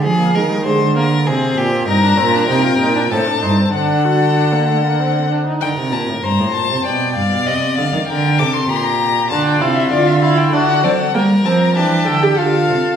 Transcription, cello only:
\new Staff \with { instrumentName = "Cello" } { \clef bass \time 3/4 \key c \minor \tempo 4 = 97 f8 ees8 d4 c8 bes,8 | \key g \minor g,8 bes,8 c8 bes,8 a,8 g,8 | d2~ d8 r8 | d16 c16 bes,16 a,16 g,16 a,16 bes,16 c16 b,8 g,16 b,16 |
c8 d16 ees16 d8 c8 bes,4 | d8 c8 d4 d8 fis8 | g8 f8 e8 d8 d8 c8 | }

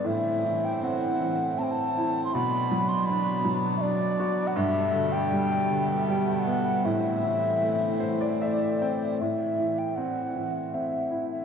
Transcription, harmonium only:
\new Staff \with { instrumentName = "Harmonium" } { \clef bass \time 3/4 \key a \dorian \tempo 4 = 79 << { <e c'>2. | <fis d'>2. | <g a>2. | <e c'>2. |
r2. | } \\ { a,2. | b,2.~ | b,2. | a,2. |
r2. | } >> }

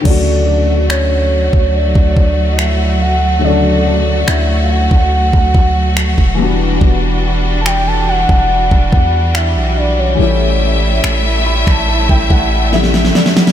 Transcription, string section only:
\new Staff \with { instrumentName = "String section" } { \time 4/4 \key d \major \tempo 4 = 71 <fis a fis'>1~ | <fis a fis'>2.~ <fis a fis'>8 <e g d'>8~ | <e g d'>1 | <a e' e''>1 | }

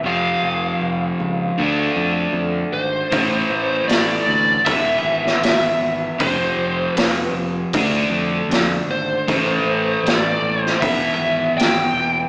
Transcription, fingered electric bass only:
\new Staff \with { instrumentName = "Fingered electric bass" } { \clef bass \time 4/4 \key a \minor \tempo 4 = 78 f,,8 f,,8 f,,8 cis,8 d,8 f,8 f,8 gis,,8 | a,,8 a,,8 a,,8 d,8 e,,8 gis,,8 gis,,8 gis,,8 | f,,8 f,,8 f,,8 f,,8 d,8 f,8 f,8 gis,,8 | a,,8 a,,8 a,,8 a,,8 e,,8 gis,,8 gis,,8 e,,8 | }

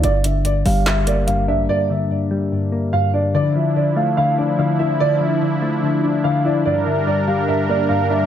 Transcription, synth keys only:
\new Staff \with { instrumentName = "Synth keys" } { \clef bass \time 4/4 \key d \minor \tempo 4 = 145 g,8 d8 g,8 g8 g,8 bes8 g,8 d'8 | g,8 d8 g,8 g8 g,8 bes8 g,8 d'8 | d8 f8 d8 a8 d8 d'8 d8 e'8 | d8 f8 d8 a8 d8 d'8 d8 e'8 |
g,8 d8 g,8 g8 g,8 bes8 g,8 d'8 | }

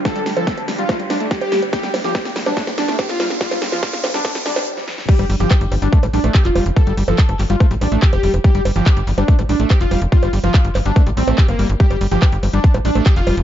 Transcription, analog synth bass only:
\new Staff \with { instrumentName = "Analog synth bass" } { \clef bass \time 4/4 \key c \dorian \tempo 4 = 143 r1 | r1 | r1 | r16 g,,16 g,,16 g,,16 r16 g,,16 g,,16 g,,16 r16 a,,16 a,,16 a,,16 r16 f,,16 f,,16 f,,16 |
r16 g,,16 g,,16 g,,16 r16 g,,16 g,,16 g,,16 r16 a,,16 a,,16 a,,16 r16 f,,16 f,,16 f,,16 | r16 g,,16 g,,16 g,,16 r16 g,,16 g,,16 g,,16 r16 a,,16 a,,16 a,,16 r16 f,,16 f,,16 f,,16 | r16 g,,16 g,,16 g,,16 r16 g,,16 g,,16 g,,16 r16 a,,16 a,,16 a,,16 r16 g,,16 g,,16 g,,16 | r16 g,,16 g,,16 g,,16 r16 g,,16 g,,16 g,,16 r16 a,,16 a,,16 a,,16 r16 f,,16 f,,16 f,,16 | }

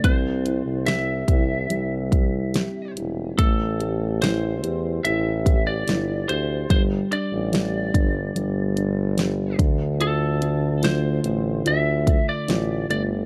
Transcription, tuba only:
\new Staff \with { instrumentName = "Tuba" } { \clef bass \time 4/4 \key a \minor \tempo 4 = 72 c,8. c,8. c,8 c,4~ c,16 r16 e,,8 | a,,4. e,8 a,,4 g,,8 d,8 | g,,8 r16 a,,8. g,,8 g,,4. d,8~ | d,4. a,,8 d,8. r16 a,,8 g,,8 | }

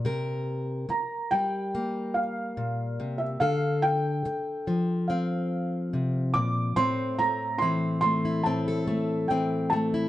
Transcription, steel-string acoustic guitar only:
\new Staff \with { instrumentName = "Steel-string acoustic guitar" } { \time 4/4 \key a \phrygian \tempo 4 = 71 << { bes'2 bes2 | a'2 c'2 | c'4 c'8. e'16 c'16 a'8. c'8. e'16 | } \\ { c4 r8 g4. bes,8 c8 | d4 r8 f4. c8 bes,8 | a,8 a8 e8 a8 a,8 a8 e8 a8 | } >> }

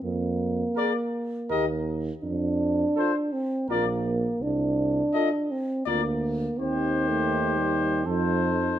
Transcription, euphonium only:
\new Staff \with { instrumentName = "Euphonium" } { \time 3/4 \key bes \major \tempo 4 = 82 bes2~ bes8 r8 | d'4. c'8 bes4 | d'4. c'8 bes4 | \tuplet 3/2 { c'4 a8~ a8 g4 } f8 r8 | }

